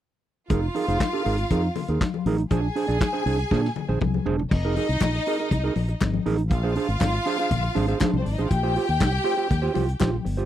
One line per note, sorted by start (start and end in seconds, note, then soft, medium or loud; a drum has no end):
0.50 0.67 F1 medium
0.50 0.66 D#4 medium
0.50 2.22 F4 medium
0.50 0.62 G#4 medium
0.50 0.61 A#4 medium
0.50 2.22 F5 loud
0.50 kick loud
0.50 closed hi-hat medium
0.50 muted conga soft
0.63 muted clean electric guitar stroke soft
0.75 0.87 D#4 medium
0.75 0.87 G#4 medium
0.75 0.88 A#4 medium
0.75 open hi-hat medium
0.75 muted conga soft
0.88 0.97 F1 medium
0.88 0.99 D#4 soft
0.88 1.00 G#4 soft
0.88 1.00 C5 soft
0.88 closed hi-hat soft
1.00 kick loud
1.00 snare loud
1.00 clap medium
1.00 closed hi-hat medium
1.00 high conga medium
1.13 1.24 D#4 medium
1.13 1.24 G#4 medium
1.13 1.25 A#4 medium
1.25 1.43 G#1 medium
1.25 1.37 D#4 medium
1.25 1.38 G#4 medium
1.25 1.37 A#4 medium
1.25 open hi-hat medium
1.38 muted clean electric guitar stroke medium
1.38 closed hi-hat soft
1.50 1.68 F2 medium
1.50 1.66 D#4 medium
1.50 1.63 G#4 medium
1.50 1.63 A#4 medium
1.50 kick medium
1.50 closed hi-hat medium
1.50 muted conga soft
1.64 muted clean electric guitar stroke soft
1.75 muted clean electric guitar stroke soft
1.75 open hi-hat medium
1.75 muted conga soft
1.75 low conga medium
1.88 1.97 D#2 medium
1.88 2.00 D#4 soft
1.88 2.01 G#4 medium
1.88 2.01 A#4 medium
1.88 closed hi-hat soft
2.01 muted clean electric guitar stroke soft
2.01 kick loud
2.01 snare medium
2.01 clap medium
2.01 closed hi-hat medium
2.01 high conga medium
2.14 muted clean electric guitar stroke soft
2.14 high conga medium
2.26 2.43 A1 medium
2.26 2.42 D#4 medium
2.26 2.38 G#4 medium
2.26 2.38 A#4 medium
2.26 open hi-hat medium
2.38 muted clean electric guitar stroke medium
2.38 closed hi-hat soft
2.50 2.68 A#1 loud
2.50 2.66 D4 medium
2.50 4.23 G#4 medium
2.50 2.62 G#4 medium
2.50 2.61 C5 medium
2.50 4.22 G#5 loud
2.50 kick loud
2.50 closed hi-hat medium
2.50 muted conga soft
2.63 muted clean electric guitar stroke soft
2.76 2.88 D4 medium
2.76 2.87 G#4 medium
2.76 2.87 C5 medium
2.76 open hi-hat medium
2.88 2.97 A#1 medium
2.88 2.99 D4 soft
2.88 2.99 G#4 medium
2.88 3.00 D5 medium
2.88 closed hi-hat soft
3.01 kick loud
3.01 snare loud
3.01 clap medium
3.01 closed hi-hat medium
3.01 high conga medium
3.13 3.25 D4 medium
3.13 3.25 G#4 medium
3.13 3.25 C5 medium
3.26 3.43 C2 medium
3.26 3.38 D4 medium
3.26 3.38 G#4 medium
3.26 3.38 C5 medium
3.26 open hi-hat medium
3.39 muted clean electric guitar stroke soft
3.39 closed hi-hat soft
3.51 3.68 A#2 medium
3.51 3.67 D4 medium
3.51 3.63 G#4 medium
3.51 3.62 C5 medium
3.51 kick medium
3.51 snare soft
3.51 muted conga soft
3.51 low conga medium
3.63 muted clean electric guitar stroke soft
3.63 snare soft
3.76 muted clean electric guitar stroke soft
3.76 muted conga soft
3.76 low conga medium
3.89 3.97 A#1 medium
3.89 4.00 D4 soft
3.89 4.00 G#4 soft
3.89 4.01 C5 medium
3.89 high tom medium
4.01 4.18 C2 medium
4.01 muted clean electric guitar stroke soft
4.01 kick loud
4.01 mid tom medium
4.01 high conga medium
4.14 muted clean electric guitar stroke soft
4.14 high conga medium
4.26 4.43 E1 medium
4.26 4.41 D4 medium
4.26 4.38 G#4 medium
4.26 4.38 C5 medium
4.26 floor tom medium
4.39 muted clean electric guitar stroke soft
4.39 floor tom medium
4.51 4.77 F1 loud
4.51 6.22 D#4 loud
4.51 6.22 D#5 loud
4.51 muted clean electric guitar stroke soft
4.51 kick loud
4.51 crash medium
4.51 muted conga medium
4.65 4.76 D#4 medium
4.65 4.76 G#4 medium
4.65 4.77 A#4 medium
4.76 4.89 D#4 medium
4.76 4.89 G#4 medium
4.76 4.88 A#4 medium
4.76 open hi-hat medium
4.76 muted conga soft
4.89 4.97 C2 medium
4.89 muted clean electric guitar stroke soft
4.89 closed hi-hat soft
5.01 5.18 A#1 medium
5.01 muted clean electric guitar stroke soft
5.01 kick loud
5.01 snare loud
5.01 clap loud
5.01 clap medium
5.01 closed hi-hat medium
5.01 high conga medium
5.15 muted clean electric guitar stroke soft
5.26 5.39 D#4 medium
5.26 5.39 G#4 medium
5.26 5.38 A#4 medium
5.26 open hi-hat medium
5.39 5.50 D#4 soft
5.39 5.51 G#4 soft
5.39 5.51 A#4 medium
5.39 closed hi-hat soft
5.51 5.68 C2 medium
5.51 muted clean electric guitar stroke soft
5.51 kick loud
5.51 closed hi-hat medium
5.51 muted conga soft
5.64 5.74 D#4 medium
5.64 5.75 G#4 medium
5.64 5.75 A#4 medium
5.76 5.93 A#1 medium
5.76 muted clean electric guitar stroke soft
5.76 open hi-hat medium
5.76 muted conga medium
5.88 muted clean electric guitar stroke soft
5.88 closed hi-hat soft
6.01 6.18 G#1 medium
6.01 muted clean electric guitar stroke soft
6.01 kick loud
6.01 snare loud
6.01 clap loud
6.01 clap medium
6.01 closed hi-hat medium
6.01 high conga medium
6.14 muted clean electric guitar stroke soft
6.14 high conga medium
6.26 6.51 A1 medium
6.26 6.41 D#4 medium
6.26 6.38 G#4 medium
6.26 6.37 A#4 medium
6.26 open hi-hat medium
6.38 muted clean electric guitar stroke soft
6.38 closed hi-hat soft
6.50 6.77 A#1 loud
6.50 8.09 F4 loud
6.50 8.09 F5 loud
6.50 muted clean electric guitar stroke soft
6.50 kick loud
6.50 closed hi-hat medium
6.50 muted conga soft
6.63 6.75 D4 medium
6.63 6.76 G#4 medium
6.63 6.76 C5 medium
6.75 6.88 D4 medium
6.75 6.88 G#4 medium
6.75 6.88 C5 medium
6.75 open hi-hat medium
6.75 muted conga soft
6.88 6.97 G#1 medium
6.88 muted clean electric guitar stroke soft
6.88 closed hi-hat soft
7.01 7.18 G#1 medium
7.01 muted clean electric guitar stroke soft
7.01 kick loud
7.01 snare loud
7.01 clap medium
7.01 closed hi-hat medium
7.01 high conga medium
7.14 muted clean electric guitar stroke soft
7.26 7.39 D4 medium
7.26 7.39 G#4 medium
7.26 7.38 C5 medium
7.26 open hi-hat medium
7.39 7.50 D4 medium
7.39 7.51 G#4 medium
7.39 7.51 C5 medium
7.39 closed hi-hat soft
7.51 7.68 A#1 medium
7.51 muted clean electric guitar stroke soft
7.51 kick loud
7.51 closed hi-hat medium
7.51 muted conga soft
7.51 low conga medium
7.63 muted clean electric guitar stroke soft
7.75 7.93 G#1 medium
7.75 7.88 D4 medium
7.75 7.87 G#4 medium
7.75 7.87 C5 medium
7.75 open hi-hat medium
7.75 muted conga soft
7.88 7.99 D4 medium
7.88 8.00 G#4 medium
7.88 8.00 C5 medium
7.88 closed hi-hat soft
8.00 8.16 D4 medium
8.00 8.13 G#4 medium
8.00 8.12 C5 medium
8.00 kick loud
8.00 snare loud
8.00 clap loud
8.00 clap medium
8.00 closed hi-hat medium
8.00 high conga medium
8.13 8.22 C2 medium
8.13 8.26 C4 medium
8.13 muted clean electric guitar stroke soft
8.13 high conga medium
8.18 8.26 C5 medium
8.25 8.35 G#1 medium
8.25 8.34 D4 medium
8.25 8.34 D5 medium
8.25 muted clean electric guitar stroke soft
8.25 snare soft
8.25 open hi-hat medium
8.34 8.42 D#4 medium
8.34 8.43 D#5 medium
8.38 8.47 A1 medium
8.38 8.50 D4 medium
8.38 8.51 G#4 medium
8.38 8.50 C5 medium
8.38 8.51 F5 medium
8.38 closed hi-hat soft
8.43 8.51 F4 medium
8.51 8.76 A#1 medium
8.51 10.22 G4 loud
8.51 10.22 G5 loud
8.51 muted clean electric guitar stroke soft
8.51 kick loud
8.51 closed hi-hat medium
8.51 muted conga medium
8.63 8.75 F4 medium
8.63 8.76 G4 medium
8.63 8.76 C5 medium
8.76 8.88 F4 medium
8.76 8.88 G4 medium
8.76 8.87 C5 medium
8.76 open hi-hat medium
8.88 8.97 D#2 medium
8.88 muted clean electric guitar stroke soft
8.88 closed hi-hat soft
9.00 9.18 C2 medium
9.00 muted clean electric guitar stroke soft
9.00 kick loud
9.00 snare loud
9.00 clap medium
9.00 closed hi-hat medium
9.00 high conga medium
9.12 muted clean electric guitar stroke soft
9.24 9.36 F4 medium
9.24 9.36 G4 medium
9.24 9.35 C5 medium
9.24 open hi-hat medium
9.37 9.49 F4 medium
9.37 9.49 G4 medium
9.37 9.49 C5 medium
9.37 closed hi-hat soft
9.50 9.68 D#2 medium
9.50 muted clean electric guitar stroke soft
9.50 kick medium
9.50 closed hi-hat medium
9.50 muted conga soft
9.62 9.73 F4 medium
9.62 9.74 G4 medium
9.62 9.74 C5 medium
9.74 9.93 C2 medium
9.74 9.87 F4 medium
9.74 9.87 G4 medium
9.74 9.86 C5 medium
9.74 open hi-hat medium
9.74 muted conga medium
9.87 muted clean electric guitar stroke soft
9.87 closed hi-hat soft
10.00 10.18 A#1 medium
10.00 10.16 F4 medium
10.00 10.12 G4 medium
10.00 10.11 C5 medium
10.00 kick loud
10.00 snare loud
10.00 clap loud
10.00 clap medium
10.00 closed hi-hat medium
10.00 high conga medium
10.13 muted clean electric guitar stroke medium
10.13 high conga medium
10.25 10.43 G1 medium
10.25 muted clean electric guitar stroke soft
10.25 open hi-hat medium
10.37 10.45 F4 medium
10.37 10.45 G4 medium
10.37 10.45 C5 medium
10.37 closed hi-hat soft